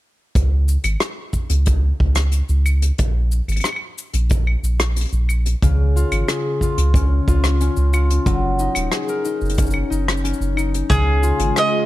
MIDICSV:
0, 0, Header, 1, 6, 480
1, 0, Start_track
1, 0, Key_signature, -5, "major"
1, 0, Tempo, 659341
1, 256, Time_signature, 4, 2, 24, 8
1, 8632, End_track
2, 0, Start_track
2, 0, Title_t, "Mandolin"
2, 0, Program_c, 0, 25
2, 7933, Note_on_c, 0, 68, 91
2, 8429, Note_off_c, 0, 68, 0
2, 8430, Note_on_c, 0, 75, 103
2, 8632, Note_off_c, 0, 75, 0
2, 8632, End_track
3, 0, Start_track
3, 0, Title_t, "Harp"
3, 0, Program_c, 1, 46
3, 4095, Note_on_c, 1, 49, 76
3, 4337, Note_on_c, 1, 65, 53
3, 4578, Note_on_c, 1, 68, 59
3, 4817, Note_off_c, 1, 65, 0
3, 4820, Note_on_c, 1, 65, 58
3, 5060, Note_on_c, 1, 61, 59
3, 5297, Note_off_c, 1, 65, 0
3, 5299, Note_on_c, 1, 65, 63
3, 5536, Note_off_c, 1, 61, 0
3, 5539, Note_on_c, 1, 61, 60
3, 5771, Note_off_c, 1, 65, 0
3, 5774, Note_on_c, 1, 65, 55
3, 6012, Note_on_c, 1, 54, 76
3, 6052, Note_off_c, 1, 49, 0
3, 6233, Note_off_c, 1, 68, 0
3, 6257, Note_on_c, 1, 63, 58
3, 6495, Note_on_c, 1, 68, 63
3, 6615, Note_on_c, 1, 70, 51
3, 6732, Note_off_c, 1, 63, 0
3, 6735, Note_on_c, 1, 63, 59
3, 6971, Note_off_c, 1, 61, 0
3, 6974, Note_on_c, 1, 61, 54
3, 7205, Note_off_c, 1, 63, 0
3, 7208, Note_on_c, 1, 63, 61
3, 7449, Note_off_c, 1, 61, 0
3, 7452, Note_on_c, 1, 61, 58
3, 7610, Note_off_c, 1, 65, 0
3, 7690, Note_off_c, 1, 63, 0
3, 7693, Note_on_c, 1, 63, 54
3, 7932, Note_on_c, 1, 49, 79
3, 7972, Note_off_c, 1, 54, 0
3, 8150, Note_off_c, 1, 68, 0
3, 8159, Note_off_c, 1, 70, 0
3, 8174, Note_on_c, 1, 65, 61
3, 8417, Note_on_c, 1, 68, 66
3, 8632, Note_off_c, 1, 49, 0
3, 8632, Note_off_c, 1, 61, 0
3, 8632, Note_off_c, 1, 63, 0
3, 8632, Note_off_c, 1, 65, 0
3, 8632, Note_off_c, 1, 68, 0
3, 8632, End_track
4, 0, Start_track
4, 0, Title_t, "Ambient pad"
4, 0, Program_c, 2, 92
4, 7938, Note_on_c, 2, 56, 73
4, 7940, Note_on_c, 2, 65, 84
4, 7941, Note_on_c, 2, 49, 78
4, 8632, Note_off_c, 2, 49, 0
4, 8632, Note_off_c, 2, 56, 0
4, 8632, Note_off_c, 2, 65, 0
4, 8632, End_track
5, 0, Start_track
5, 0, Title_t, "Analog synth bass"
5, 0, Program_c, 3, 38
5, 257, Note_on_c, 3, 37, 89
5, 561, Note_off_c, 3, 37, 0
5, 614, Note_on_c, 3, 32, 91
5, 700, Note_off_c, 3, 32, 0
5, 1092, Note_on_c, 3, 37, 91
5, 1398, Note_off_c, 3, 37, 0
5, 1457, Note_on_c, 3, 37, 73
5, 1761, Note_off_c, 3, 37, 0
5, 1815, Note_on_c, 3, 37, 92
5, 2120, Note_off_c, 3, 37, 0
5, 2178, Note_on_c, 3, 34, 95
5, 2482, Note_off_c, 3, 34, 0
5, 2535, Note_on_c, 3, 32, 93
5, 2621, Note_off_c, 3, 32, 0
5, 3013, Note_on_c, 3, 34, 99
5, 3319, Note_off_c, 3, 34, 0
5, 3373, Note_on_c, 3, 34, 72
5, 3679, Note_off_c, 3, 34, 0
5, 3732, Note_on_c, 3, 34, 92
5, 4038, Note_off_c, 3, 34, 0
5, 4095, Note_on_c, 3, 37, 94
5, 4400, Note_off_c, 3, 37, 0
5, 4454, Note_on_c, 3, 32, 85
5, 4540, Note_off_c, 3, 32, 0
5, 4936, Note_on_c, 3, 37, 96
5, 5241, Note_off_c, 3, 37, 0
5, 5297, Note_on_c, 3, 37, 79
5, 5601, Note_off_c, 3, 37, 0
5, 5657, Note_on_c, 3, 37, 86
5, 5961, Note_off_c, 3, 37, 0
5, 6014, Note_on_c, 3, 30, 83
5, 6319, Note_off_c, 3, 30, 0
5, 6380, Note_on_c, 3, 27, 90
5, 6463, Note_off_c, 3, 27, 0
5, 6856, Note_on_c, 3, 30, 88
5, 7160, Note_off_c, 3, 30, 0
5, 7218, Note_on_c, 3, 30, 82
5, 7521, Note_off_c, 3, 30, 0
5, 7576, Note_on_c, 3, 30, 89
5, 7881, Note_off_c, 3, 30, 0
5, 7936, Note_on_c, 3, 37, 89
5, 8240, Note_off_c, 3, 37, 0
5, 8297, Note_on_c, 3, 32, 88
5, 8382, Note_off_c, 3, 32, 0
5, 8632, End_track
6, 0, Start_track
6, 0, Title_t, "Drums"
6, 257, Note_on_c, 9, 36, 105
6, 258, Note_on_c, 9, 42, 48
6, 261, Note_on_c, 9, 69, 59
6, 330, Note_off_c, 9, 36, 0
6, 331, Note_off_c, 9, 42, 0
6, 333, Note_off_c, 9, 69, 0
6, 497, Note_on_c, 9, 69, 76
6, 570, Note_off_c, 9, 69, 0
6, 609, Note_on_c, 9, 42, 60
6, 613, Note_on_c, 9, 75, 75
6, 614, Note_on_c, 9, 69, 42
6, 682, Note_off_c, 9, 42, 0
6, 686, Note_off_c, 9, 75, 0
6, 687, Note_off_c, 9, 69, 0
6, 728, Note_on_c, 9, 42, 54
6, 731, Note_on_c, 9, 37, 72
6, 739, Note_on_c, 9, 69, 53
6, 801, Note_off_c, 9, 42, 0
6, 804, Note_off_c, 9, 37, 0
6, 812, Note_off_c, 9, 69, 0
6, 969, Note_on_c, 9, 36, 55
6, 970, Note_on_c, 9, 69, 69
6, 1042, Note_off_c, 9, 36, 0
6, 1042, Note_off_c, 9, 69, 0
6, 1089, Note_on_c, 9, 42, 65
6, 1094, Note_on_c, 9, 69, 44
6, 1162, Note_off_c, 9, 42, 0
6, 1167, Note_off_c, 9, 69, 0
6, 1207, Note_on_c, 9, 42, 63
6, 1216, Note_on_c, 9, 36, 99
6, 1217, Note_on_c, 9, 69, 51
6, 1280, Note_off_c, 9, 42, 0
6, 1289, Note_off_c, 9, 36, 0
6, 1289, Note_off_c, 9, 69, 0
6, 1457, Note_on_c, 9, 36, 84
6, 1529, Note_off_c, 9, 36, 0
6, 1565, Note_on_c, 9, 42, 66
6, 1569, Note_on_c, 9, 69, 45
6, 1570, Note_on_c, 9, 37, 70
6, 1637, Note_off_c, 9, 42, 0
6, 1642, Note_off_c, 9, 69, 0
6, 1643, Note_off_c, 9, 37, 0
6, 1686, Note_on_c, 9, 42, 49
6, 1692, Note_on_c, 9, 69, 51
6, 1759, Note_off_c, 9, 42, 0
6, 1765, Note_off_c, 9, 69, 0
6, 1811, Note_on_c, 9, 69, 50
6, 1884, Note_off_c, 9, 69, 0
6, 1934, Note_on_c, 9, 75, 64
6, 1936, Note_on_c, 9, 69, 82
6, 2007, Note_off_c, 9, 75, 0
6, 2009, Note_off_c, 9, 69, 0
6, 2055, Note_on_c, 9, 42, 63
6, 2060, Note_on_c, 9, 69, 50
6, 2127, Note_off_c, 9, 42, 0
6, 2132, Note_off_c, 9, 69, 0
6, 2171, Note_on_c, 9, 42, 58
6, 2177, Note_on_c, 9, 36, 112
6, 2179, Note_on_c, 9, 69, 51
6, 2244, Note_off_c, 9, 42, 0
6, 2250, Note_off_c, 9, 36, 0
6, 2251, Note_off_c, 9, 69, 0
6, 2413, Note_on_c, 9, 69, 84
6, 2486, Note_off_c, 9, 69, 0
6, 2536, Note_on_c, 9, 75, 32
6, 2537, Note_on_c, 9, 42, 28
6, 2540, Note_on_c, 9, 69, 45
6, 2561, Note_off_c, 9, 75, 0
6, 2561, Note_on_c, 9, 75, 38
6, 2562, Note_off_c, 9, 42, 0
6, 2562, Note_on_c, 9, 42, 34
6, 2593, Note_off_c, 9, 75, 0
6, 2593, Note_on_c, 9, 75, 41
6, 2594, Note_off_c, 9, 42, 0
6, 2594, Note_on_c, 9, 42, 40
6, 2613, Note_off_c, 9, 69, 0
6, 2623, Note_off_c, 9, 75, 0
6, 2623, Note_on_c, 9, 75, 45
6, 2624, Note_off_c, 9, 42, 0
6, 2624, Note_on_c, 9, 42, 46
6, 2651, Note_on_c, 9, 37, 64
6, 2652, Note_off_c, 9, 75, 0
6, 2652, Note_on_c, 9, 75, 51
6, 2654, Note_on_c, 9, 69, 50
6, 2657, Note_off_c, 9, 42, 0
6, 2657, Note_on_c, 9, 42, 58
6, 2685, Note_off_c, 9, 75, 0
6, 2685, Note_on_c, 9, 75, 51
6, 2712, Note_off_c, 9, 75, 0
6, 2712, Note_on_c, 9, 75, 56
6, 2724, Note_off_c, 9, 37, 0
6, 2727, Note_off_c, 9, 69, 0
6, 2729, Note_off_c, 9, 42, 0
6, 2739, Note_off_c, 9, 75, 0
6, 2739, Note_on_c, 9, 75, 61
6, 2812, Note_off_c, 9, 75, 0
6, 2897, Note_on_c, 9, 69, 87
6, 2970, Note_off_c, 9, 69, 0
6, 3010, Note_on_c, 9, 42, 65
6, 3017, Note_on_c, 9, 69, 47
6, 3082, Note_off_c, 9, 42, 0
6, 3090, Note_off_c, 9, 69, 0
6, 3126, Note_on_c, 9, 42, 53
6, 3137, Note_on_c, 9, 36, 104
6, 3139, Note_on_c, 9, 69, 57
6, 3199, Note_off_c, 9, 42, 0
6, 3209, Note_off_c, 9, 36, 0
6, 3212, Note_off_c, 9, 69, 0
6, 3256, Note_on_c, 9, 75, 60
6, 3329, Note_off_c, 9, 75, 0
6, 3377, Note_on_c, 9, 69, 78
6, 3450, Note_off_c, 9, 69, 0
6, 3491, Note_on_c, 9, 42, 64
6, 3491, Note_on_c, 9, 69, 46
6, 3493, Note_on_c, 9, 37, 72
6, 3564, Note_off_c, 9, 42, 0
6, 3564, Note_off_c, 9, 69, 0
6, 3565, Note_off_c, 9, 37, 0
6, 3613, Note_on_c, 9, 42, 50
6, 3617, Note_on_c, 9, 69, 58
6, 3645, Note_off_c, 9, 42, 0
6, 3645, Note_on_c, 9, 42, 39
6, 3677, Note_off_c, 9, 42, 0
6, 3677, Note_on_c, 9, 42, 33
6, 3690, Note_off_c, 9, 69, 0
6, 3704, Note_off_c, 9, 42, 0
6, 3704, Note_on_c, 9, 42, 26
6, 3732, Note_on_c, 9, 69, 48
6, 3777, Note_off_c, 9, 42, 0
6, 3805, Note_off_c, 9, 69, 0
6, 3850, Note_on_c, 9, 75, 63
6, 3856, Note_on_c, 9, 69, 90
6, 3923, Note_off_c, 9, 75, 0
6, 3929, Note_off_c, 9, 69, 0
6, 3973, Note_on_c, 9, 42, 69
6, 3978, Note_on_c, 9, 69, 48
6, 4046, Note_off_c, 9, 42, 0
6, 4051, Note_off_c, 9, 69, 0
6, 4094, Note_on_c, 9, 42, 48
6, 4095, Note_on_c, 9, 36, 107
6, 4102, Note_on_c, 9, 69, 59
6, 4167, Note_off_c, 9, 42, 0
6, 4168, Note_off_c, 9, 36, 0
6, 4174, Note_off_c, 9, 69, 0
6, 4345, Note_on_c, 9, 69, 82
6, 4418, Note_off_c, 9, 69, 0
6, 4453, Note_on_c, 9, 42, 58
6, 4455, Note_on_c, 9, 69, 44
6, 4455, Note_on_c, 9, 75, 74
6, 4526, Note_off_c, 9, 42, 0
6, 4528, Note_off_c, 9, 69, 0
6, 4528, Note_off_c, 9, 75, 0
6, 4573, Note_on_c, 9, 69, 52
6, 4575, Note_on_c, 9, 37, 66
6, 4577, Note_on_c, 9, 42, 54
6, 4646, Note_off_c, 9, 69, 0
6, 4648, Note_off_c, 9, 37, 0
6, 4650, Note_off_c, 9, 42, 0
6, 4812, Note_on_c, 9, 36, 61
6, 4821, Note_on_c, 9, 69, 73
6, 4885, Note_off_c, 9, 36, 0
6, 4894, Note_off_c, 9, 69, 0
6, 4934, Note_on_c, 9, 42, 60
6, 4939, Note_on_c, 9, 69, 44
6, 5007, Note_off_c, 9, 42, 0
6, 5011, Note_off_c, 9, 69, 0
6, 5052, Note_on_c, 9, 36, 116
6, 5061, Note_on_c, 9, 42, 53
6, 5061, Note_on_c, 9, 69, 59
6, 5125, Note_off_c, 9, 36, 0
6, 5134, Note_off_c, 9, 42, 0
6, 5134, Note_off_c, 9, 69, 0
6, 5297, Note_on_c, 9, 36, 87
6, 5302, Note_on_c, 9, 69, 78
6, 5370, Note_off_c, 9, 36, 0
6, 5374, Note_off_c, 9, 69, 0
6, 5414, Note_on_c, 9, 42, 56
6, 5415, Note_on_c, 9, 37, 67
6, 5415, Note_on_c, 9, 69, 46
6, 5487, Note_off_c, 9, 42, 0
6, 5488, Note_off_c, 9, 37, 0
6, 5488, Note_off_c, 9, 69, 0
6, 5536, Note_on_c, 9, 42, 50
6, 5539, Note_on_c, 9, 69, 49
6, 5609, Note_off_c, 9, 42, 0
6, 5611, Note_off_c, 9, 69, 0
6, 5652, Note_on_c, 9, 69, 43
6, 5725, Note_off_c, 9, 69, 0
6, 5775, Note_on_c, 9, 69, 81
6, 5778, Note_on_c, 9, 75, 71
6, 5848, Note_off_c, 9, 69, 0
6, 5851, Note_off_c, 9, 75, 0
6, 5899, Note_on_c, 9, 42, 64
6, 5907, Note_on_c, 9, 69, 46
6, 5972, Note_off_c, 9, 42, 0
6, 5979, Note_off_c, 9, 69, 0
6, 6014, Note_on_c, 9, 36, 105
6, 6015, Note_on_c, 9, 42, 55
6, 6016, Note_on_c, 9, 69, 56
6, 6087, Note_off_c, 9, 36, 0
6, 6088, Note_off_c, 9, 42, 0
6, 6088, Note_off_c, 9, 69, 0
6, 6254, Note_on_c, 9, 69, 88
6, 6327, Note_off_c, 9, 69, 0
6, 6370, Note_on_c, 9, 75, 71
6, 6374, Note_on_c, 9, 42, 67
6, 6377, Note_on_c, 9, 69, 47
6, 6443, Note_off_c, 9, 75, 0
6, 6447, Note_off_c, 9, 42, 0
6, 6449, Note_off_c, 9, 69, 0
6, 6490, Note_on_c, 9, 37, 68
6, 6491, Note_on_c, 9, 42, 53
6, 6492, Note_on_c, 9, 69, 48
6, 6563, Note_off_c, 9, 37, 0
6, 6564, Note_off_c, 9, 42, 0
6, 6565, Note_off_c, 9, 69, 0
6, 6614, Note_on_c, 9, 69, 47
6, 6687, Note_off_c, 9, 69, 0
6, 6733, Note_on_c, 9, 69, 69
6, 6806, Note_off_c, 9, 69, 0
6, 6851, Note_on_c, 9, 69, 21
6, 6881, Note_off_c, 9, 69, 0
6, 6881, Note_on_c, 9, 69, 24
6, 6913, Note_off_c, 9, 69, 0
6, 6913, Note_on_c, 9, 42, 55
6, 6913, Note_on_c, 9, 69, 29
6, 6945, Note_off_c, 9, 69, 0
6, 6945, Note_on_c, 9, 69, 29
6, 6971, Note_off_c, 9, 42, 0
6, 6971, Note_on_c, 9, 42, 59
6, 6975, Note_off_c, 9, 69, 0
6, 6975, Note_on_c, 9, 69, 40
6, 6977, Note_on_c, 9, 36, 108
6, 6979, Note_off_c, 9, 69, 0
6, 6979, Note_on_c, 9, 69, 60
6, 7003, Note_off_c, 9, 69, 0
6, 7003, Note_on_c, 9, 69, 43
6, 7034, Note_off_c, 9, 69, 0
6, 7034, Note_on_c, 9, 69, 45
6, 7043, Note_off_c, 9, 42, 0
6, 7050, Note_off_c, 9, 36, 0
6, 7065, Note_off_c, 9, 69, 0
6, 7065, Note_on_c, 9, 69, 49
6, 7089, Note_on_c, 9, 75, 62
6, 7137, Note_off_c, 9, 69, 0
6, 7161, Note_off_c, 9, 75, 0
6, 7222, Note_on_c, 9, 69, 70
6, 7295, Note_off_c, 9, 69, 0
6, 7341, Note_on_c, 9, 37, 66
6, 7341, Note_on_c, 9, 42, 61
6, 7343, Note_on_c, 9, 69, 21
6, 7404, Note_off_c, 9, 69, 0
6, 7404, Note_on_c, 9, 69, 25
6, 7414, Note_off_c, 9, 37, 0
6, 7414, Note_off_c, 9, 42, 0
6, 7459, Note_on_c, 9, 42, 55
6, 7466, Note_off_c, 9, 69, 0
6, 7466, Note_on_c, 9, 69, 49
6, 7523, Note_off_c, 9, 69, 0
6, 7523, Note_on_c, 9, 69, 38
6, 7532, Note_off_c, 9, 42, 0
6, 7582, Note_off_c, 9, 69, 0
6, 7582, Note_on_c, 9, 69, 42
6, 7655, Note_off_c, 9, 69, 0
6, 7696, Note_on_c, 9, 75, 65
6, 7705, Note_on_c, 9, 69, 74
6, 7769, Note_off_c, 9, 75, 0
6, 7778, Note_off_c, 9, 69, 0
6, 7821, Note_on_c, 9, 42, 54
6, 7824, Note_on_c, 9, 69, 45
6, 7893, Note_off_c, 9, 42, 0
6, 7897, Note_off_c, 9, 69, 0
6, 7935, Note_on_c, 9, 36, 106
6, 7943, Note_on_c, 9, 42, 54
6, 7945, Note_on_c, 9, 69, 54
6, 8008, Note_off_c, 9, 36, 0
6, 8016, Note_off_c, 9, 42, 0
6, 8018, Note_off_c, 9, 69, 0
6, 8176, Note_on_c, 9, 69, 71
6, 8249, Note_off_c, 9, 69, 0
6, 8296, Note_on_c, 9, 42, 61
6, 8302, Note_on_c, 9, 69, 43
6, 8369, Note_off_c, 9, 42, 0
6, 8375, Note_off_c, 9, 69, 0
6, 8416, Note_on_c, 9, 42, 55
6, 8418, Note_on_c, 9, 37, 68
6, 8421, Note_on_c, 9, 69, 53
6, 8489, Note_off_c, 9, 42, 0
6, 8490, Note_off_c, 9, 37, 0
6, 8493, Note_off_c, 9, 69, 0
6, 8632, End_track
0, 0, End_of_file